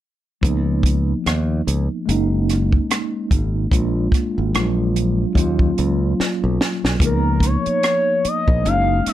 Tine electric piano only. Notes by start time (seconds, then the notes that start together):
0.41 F3 A#3 B3
0.46 D#4
2.06 G#3 A#3 C#4
2.10 D#4
3.71 G#3 A#3 D4 F4
4.53 F#3 G#3 B3 F4
4.61 D4
5.35 F#3 A#3 C#4
5.39 F4
6.99 F3 A#3 B3
7.03 D#4
8.63 G#3 A#3 C#4
8.67 D#4